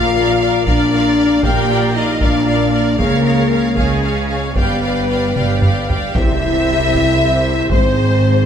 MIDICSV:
0, 0, Header, 1, 9, 480
1, 0, Start_track
1, 0, Tempo, 515464
1, 1345, Time_signature, 6, 3, 24, 8
1, 2788, Tempo, 527704
1, 5668, Tempo, 517688
1, 7797, End_track
2, 0, Start_track
2, 0, Title_t, "Violin section"
2, 0, Program_c, 0, 48
2, 0, Note_on_c, 0, 77, 60
2, 141, Note_off_c, 0, 77, 0
2, 152, Note_on_c, 0, 77, 49
2, 154, Note_off_c, 0, 77, 0
2, 154, Note_on_c, 0, 77, 47
2, 373, Note_off_c, 0, 77, 0
2, 384, Note_on_c, 0, 77, 50
2, 386, Note_off_c, 0, 77, 0
2, 386, Note_on_c, 0, 77, 46
2, 619, Note_off_c, 0, 77, 0
2, 630, Note_on_c, 0, 77, 55
2, 631, Note_off_c, 0, 77, 0
2, 631, Note_on_c, 0, 77, 51
2, 863, Note_off_c, 0, 77, 0
2, 881, Note_on_c, 0, 77, 47
2, 887, Note_off_c, 0, 77, 0
2, 887, Note_on_c, 0, 77, 48
2, 1098, Note_off_c, 0, 77, 0
2, 1109, Note_on_c, 0, 77, 44
2, 1113, Note_off_c, 0, 77, 0
2, 1113, Note_on_c, 0, 77, 45
2, 1335, Note_off_c, 0, 77, 0
2, 1346, Note_on_c, 0, 77, 59
2, 1351, Note_off_c, 0, 77, 0
2, 1351, Note_on_c, 0, 77, 61
2, 1578, Note_off_c, 0, 77, 0
2, 1589, Note_on_c, 0, 77, 49
2, 1599, Note_off_c, 0, 77, 0
2, 1599, Note_on_c, 0, 77, 43
2, 1822, Note_off_c, 0, 77, 0
2, 1833, Note_on_c, 0, 77, 45
2, 1834, Note_off_c, 0, 77, 0
2, 1834, Note_on_c, 0, 77, 50
2, 2057, Note_off_c, 0, 77, 0
2, 2069, Note_on_c, 0, 77, 55
2, 2291, Note_off_c, 0, 77, 0
2, 2302, Note_on_c, 0, 77, 47
2, 2533, Note_off_c, 0, 77, 0
2, 2544, Note_on_c, 0, 77, 44
2, 2549, Note_off_c, 0, 77, 0
2, 2549, Note_on_c, 0, 77, 44
2, 2772, Note_off_c, 0, 77, 0
2, 2783, Note_on_c, 0, 77, 55
2, 2790, Note_off_c, 0, 77, 0
2, 2790, Note_on_c, 0, 77, 57
2, 3010, Note_off_c, 0, 77, 0
2, 3021, Note_on_c, 0, 77, 42
2, 3026, Note_off_c, 0, 77, 0
2, 3026, Note_on_c, 0, 77, 45
2, 3246, Note_off_c, 0, 77, 0
2, 3257, Note_on_c, 0, 77, 39
2, 3262, Note_off_c, 0, 77, 0
2, 3262, Note_on_c, 0, 77, 44
2, 3481, Note_off_c, 0, 77, 0
2, 3492, Note_on_c, 0, 77, 45
2, 3493, Note_off_c, 0, 77, 0
2, 3493, Note_on_c, 0, 77, 45
2, 3721, Note_off_c, 0, 77, 0
2, 3731, Note_on_c, 0, 77, 39
2, 3732, Note_off_c, 0, 77, 0
2, 3732, Note_on_c, 0, 77, 37
2, 3950, Note_off_c, 0, 77, 0
2, 3960, Note_on_c, 0, 77, 34
2, 3964, Note_off_c, 0, 77, 0
2, 3964, Note_on_c, 0, 77, 34
2, 4207, Note_off_c, 0, 77, 0
2, 4217, Note_on_c, 0, 79, 49
2, 4221, Note_on_c, 0, 77, 44
2, 4436, Note_off_c, 0, 77, 0
2, 4437, Note_off_c, 0, 79, 0
2, 4447, Note_on_c, 0, 77, 37
2, 4447, Note_on_c, 0, 79, 41
2, 4681, Note_off_c, 0, 77, 0
2, 4690, Note_off_c, 0, 79, 0
2, 4692, Note_on_c, 0, 77, 39
2, 4699, Note_on_c, 0, 79, 41
2, 4924, Note_off_c, 0, 79, 0
2, 4933, Note_off_c, 0, 77, 0
2, 4935, Note_on_c, 0, 79, 44
2, 4942, Note_on_c, 0, 77, 40
2, 5172, Note_off_c, 0, 77, 0
2, 5172, Note_off_c, 0, 79, 0
2, 5183, Note_on_c, 0, 77, 38
2, 5183, Note_on_c, 0, 79, 36
2, 5408, Note_off_c, 0, 79, 0
2, 5409, Note_off_c, 0, 77, 0
2, 5419, Note_on_c, 0, 79, 45
2, 5420, Note_on_c, 0, 77, 43
2, 5658, Note_off_c, 0, 79, 0
2, 5659, Note_off_c, 0, 77, 0
2, 5660, Note_on_c, 0, 76, 74
2, 7069, Note_off_c, 0, 76, 0
2, 7103, Note_on_c, 0, 72, 68
2, 7797, Note_off_c, 0, 72, 0
2, 7797, End_track
3, 0, Start_track
3, 0, Title_t, "Violin section"
3, 0, Program_c, 1, 48
3, 0, Note_on_c, 1, 77, 69
3, 583, Note_off_c, 1, 77, 0
3, 623, Note_on_c, 1, 74, 62
3, 1340, Note_on_c, 1, 79, 77
3, 1342, Note_off_c, 1, 74, 0
3, 1812, Note_off_c, 1, 79, 0
3, 1820, Note_on_c, 1, 75, 59
3, 2062, Note_off_c, 1, 75, 0
3, 2073, Note_on_c, 1, 74, 46
3, 2792, Note_on_c, 1, 70, 64
3, 2793, Note_off_c, 1, 74, 0
3, 3487, Note_off_c, 1, 70, 0
3, 3507, Note_on_c, 1, 68, 44
3, 4208, Note_off_c, 1, 68, 0
3, 4227, Note_on_c, 1, 71, 53
3, 5407, Note_off_c, 1, 71, 0
3, 5670, Note_on_c, 1, 76, 69
3, 7074, Note_off_c, 1, 76, 0
3, 7106, Note_on_c, 1, 72, 59
3, 7797, Note_off_c, 1, 72, 0
3, 7797, End_track
4, 0, Start_track
4, 0, Title_t, "Viola section"
4, 0, Program_c, 2, 48
4, 0, Note_on_c, 2, 70, 53
4, 0, Note_on_c, 2, 74, 56
4, 139, Note_off_c, 2, 74, 0
4, 143, Note_off_c, 2, 70, 0
4, 150, Note_on_c, 2, 74, 53
4, 154, Note_on_c, 2, 70, 54
4, 375, Note_off_c, 2, 70, 0
4, 375, Note_off_c, 2, 74, 0
4, 386, Note_on_c, 2, 70, 53
4, 386, Note_on_c, 2, 74, 49
4, 619, Note_off_c, 2, 70, 0
4, 619, Note_off_c, 2, 74, 0
4, 630, Note_on_c, 2, 70, 49
4, 630, Note_on_c, 2, 74, 52
4, 856, Note_off_c, 2, 70, 0
4, 857, Note_off_c, 2, 74, 0
4, 867, Note_on_c, 2, 70, 48
4, 869, Note_on_c, 2, 74, 50
4, 1091, Note_off_c, 2, 74, 0
4, 1092, Note_off_c, 2, 70, 0
4, 1102, Note_on_c, 2, 74, 44
4, 1103, Note_on_c, 2, 70, 46
4, 1328, Note_off_c, 2, 74, 0
4, 1334, Note_off_c, 2, 70, 0
4, 1340, Note_on_c, 2, 74, 50
4, 1345, Note_on_c, 2, 70, 59
4, 1573, Note_off_c, 2, 70, 0
4, 1575, Note_off_c, 2, 74, 0
4, 1584, Note_on_c, 2, 70, 49
4, 1586, Note_on_c, 2, 74, 54
4, 1805, Note_off_c, 2, 74, 0
4, 1808, Note_off_c, 2, 70, 0
4, 1816, Note_on_c, 2, 74, 49
4, 1819, Note_on_c, 2, 70, 46
4, 2049, Note_off_c, 2, 74, 0
4, 2051, Note_off_c, 2, 70, 0
4, 2060, Note_on_c, 2, 74, 49
4, 2062, Note_on_c, 2, 70, 49
4, 2287, Note_off_c, 2, 74, 0
4, 2288, Note_off_c, 2, 70, 0
4, 2298, Note_on_c, 2, 74, 49
4, 2299, Note_on_c, 2, 70, 46
4, 2533, Note_off_c, 2, 74, 0
4, 2534, Note_off_c, 2, 70, 0
4, 2544, Note_on_c, 2, 74, 41
4, 2545, Note_on_c, 2, 70, 41
4, 2782, Note_off_c, 2, 74, 0
4, 2782, Note_on_c, 2, 68, 49
4, 2783, Note_off_c, 2, 70, 0
4, 2785, Note_on_c, 2, 73, 51
4, 3013, Note_off_c, 2, 68, 0
4, 3014, Note_off_c, 2, 73, 0
4, 3024, Note_on_c, 2, 68, 47
4, 3025, Note_on_c, 2, 73, 47
4, 3254, Note_off_c, 2, 73, 0
4, 3257, Note_off_c, 2, 68, 0
4, 3265, Note_on_c, 2, 73, 44
4, 3267, Note_on_c, 2, 68, 45
4, 3487, Note_off_c, 2, 68, 0
4, 3489, Note_off_c, 2, 73, 0
4, 3498, Note_on_c, 2, 68, 46
4, 3500, Note_on_c, 2, 73, 46
4, 3730, Note_off_c, 2, 73, 0
4, 3733, Note_off_c, 2, 68, 0
4, 3741, Note_on_c, 2, 73, 42
4, 3744, Note_on_c, 2, 68, 41
4, 3965, Note_off_c, 2, 68, 0
4, 3968, Note_off_c, 2, 73, 0
4, 3976, Note_on_c, 2, 68, 38
4, 3979, Note_on_c, 2, 73, 39
4, 4213, Note_off_c, 2, 68, 0
4, 4213, Note_on_c, 2, 67, 46
4, 4214, Note_off_c, 2, 73, 0
4, 4218, Note_on_c, 2, 74, 42
4, 4444, Note_off_c, 2, 67, 0
4, 4444, Note_off_c, 2, 74, 0
4, 4455, Note_on_c, 2, 67, 41
4, 4455, Note_on_c, 2, 74, 38
4, 4689, Note_off_c, 2, 74, 0
4, 4693, Note_off_c, 2, 67, 0
4, 4700, Note_on_c, 2, 74, 39
4, 4703, Note_on_c, 2, 67, 41
4, 4933, Note_off_c, 2, 67, 0
4, 4933, Note_off_c, 2, 74, 0
4, 4944, Note_on_c, 2, 67, 41
4, 4944, Note_on_c, 2, 74, 38
4, 5173, Note_off_c, 2, 67, 0
4, 5176, Note_off_c, 2, 74, 0
4, 5184, Note_on_c, 2, 67, 41
4, 5187, Note_on_c, 2, 74, 39
4, 5411, Note_off_c, 2, 67, 0
4, 5415, Note_off_c, 2, 74, 0
4, 5422, Note_on_c, 2, 67, 36
4, 5426, Note_on_c, 2, 74, 36
4, 5657, Note_off_c, 2, 67, 0
4, 5661, Note_off_c, 2, 74, 0
4, 5668, Note_on_c, 2, 67, 47
4, 5668, Note_on_c, 2, 72, 53
4, 7073, Note_off_c, 2, 67, 0
4, 7111, Note_on_c, 2, 68, 53
4, 7797, Note_off_c, 2, 68, 0
4, 7797, Note_off_c, 2, 72, 0
4, 7797, End_track
5, 0, Start_track
5, 0, Title_t, "French horn section"
5, 0, Program_c, 3, 60
5, 0, Note_on_c, 3, 65, 80
5, 586, Note_off_c, 3, 65, 0
5, 628, Note_on_c, 3, 62, 86
5, 1343, Note_on_c, 3, 67, 78
5, 1345, Note_off_c, 3, 62, 0
5, 1814, Note_off_c, 3, 67, 0
5, 1817, Note_on_c, 3, 63, 63
5, 2060, Note_off_c, 3, 63, 0
5, 2075, Note_on_c, 3, 62, 68
5, 2781, Note_on_c, 3, 58, 80
5, 2794, Note_off_c, 3, 62, 0
5, 3482, Note_off_c, 3, 58, 0
5, 3506, Note_on_c, 3, 56, 59
5, 4200, Note_on_c, 3, 59, 54
5, 4222, Note_off_c, 3, 56, 0
5, 5393, Note_off_c, 3, 59, 0
5, 5670, Note_on_c, 3, 64, 77
5, 7074, Note_off_c, 3, 64, 0
5, 7113, Note_on_c, 3, 60, 67
5, 7797, Note_off_c, 3, 60, 0
5, 7797, End_track
6, 0, Start_track
6, 0, Title_t, "Cello section"
6, 0, Program_c, 4, 48
6, 0, Note_on_c, 4, 46, 57
6, 540, Note_off_c, 4, 46, 0
6, 619, Note_on_c, 4, 46, 64
6, 1256, Note_off_c, 4, 46, 0
6, 1340, Note_on_c, 4, 46, 67
6, 1977, Note_off_c, 4, 46, 0
6, 2068, Note_on_c, 4, 46, 59
6, 2705, Note_off_c, 4, 46, 0
6, 2787, Note_on_c, 4, 49, 58
6, 3414, Note_off_c, 4, 49, 0
6, 3497, Note_on_c, 4, 49, 55
6, 4132, Note_off_c, 4, 49, 0
6, 4219, Note_on_c, 4, 43, 51
6, 4857, Note_off_c, 4, 43, 0
6, 4942, Note_on_c, 4, 43, 50
6, 5582, Note_off_c, 4, 43, 0
6, 5659, Note_on_c, 4, 48, 51
6, 7069, Note_off_c, 4, 48, 0
6, 7110, Note_on_c, 4, 44, 54
6, 7797, Note_off_c, 4, 44, 0
6, 7797, End_track
7, 0, Start_track
7, 0, Title_t, "Double bass section"
7, 0, Program_c, 5, 48
7, 0, Note_on_c, 5, 34, 71
7, 541, Note_off_c, 5, 34, 0
7, 626, Note_on_c, 5, 34, 63
7, 1259, Note_off_c, 5, 34, 0
7, 1341, Note_on_c, 5, 34, 61
7, 1977, Note_off_c, 5, 34, 0
7, 2069, Note_on_c, 5, 34, 58
7, 2705, Note_off_c, 5, 34, 0
7, 2785, Note_on_c, 5, 37, 61
7, 3413, Note_off_c, 5, 37, 0
7, 3504, Note_on_c, 5, 37, 53
7, 4136, Note_off_c, 5, 37, 0
7, 4216, Note_on_c, 5, 31, 56
7, 4855, Note_off_c, 5, 31, 0
7, 4944, Note_on_c, 5, 31, 48
7, 5583, Note_off_c, 5, 31, 0
7, 5672, Note_on_c, 5, 36, 58
7, 7075, Note_off_c, 5, 36, 0
7, 7110, Note_on_c, 5, 32, 60
7, 7797, Note_off_c, 5, 32, 0
7, 7797, End_track
8, 0, Start_track
8, 0, Title_t, "Impact"
8, 0, Program_c, 6, 103
8, 5662, Note_on_c, 6, 60, 57
8, 7107, Note_off_c, 6, 60, 0
8, 7797, End_track
9, 0, Start_track
9, 0, Title_t, "Taiko and cinematic ensemble drums"
9, 622, Note_on_c, 9, 41, 67
9, 715, Note_off_c, 9, 41, 0
9, 1336, Note_on_c, 9, 41, 81
9, 1430, Note_off_c, 9, 41, 0
9, 2058, Note_on_c, 9, 41, 61
9, 2151, Note_off_c, 9, 41, 0
9, 2777, Note_on_c, 9, 41, 71
9, 2868, Note_off_c, 9, 41, 0
9, 3490, Note_on_c, 9, 41, 69
9, 3581, Note_off_c, 9, 41, 0
9, 4210, Note_on_c, 9, 41, 79
9, 4301, Note_off_c, 9, 41, 0
9, 4939, Note_on_c, 9, 47, 60
9, 5030, Note_off_c, 9, 47, 0
9, 5178, Note_on_c, 9, 45, 64
9, 5269, Note_off_c, 9, 45, 0
9, 5425, Note_on_c, 9, 43, 75
9, 5516, Note_off_c, 9, 43, 0
9, 5661, Note_on_c, 9, 41, 73
9, 5753, Note_off_c, 9, 41, 0
9, 6387, Note_on_c, 9, 41, 66
9, 6480, Note_off_c, 9, 41, 0
9, 7104, Note_on_c, 9, 41, 80
9, 7197, Note_off_c, 9, 41, 0
9, 7797, End_track
0, 0, End_of_file